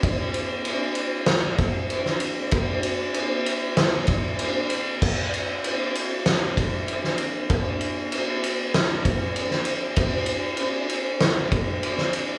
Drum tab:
CC |----------------|----------------|x---------------|----------------|
RD |x-x-x-x-x-x-x-x-|x-x-x-x-x-x-x-x-|--x-x-x-x-x-x-x-|x-x-x-x-x-x-x-x-|
SD |--------o----o--|--------o-------|--------o----o--|--------o----o--|
BD |o---------o-----|o---------o-----|o---------o-----|o---------o-----|

CC |----------------|
RD |x-x-x-x-x-x-x-x-|
SD |--------o----o--|
BD |o---------o-----|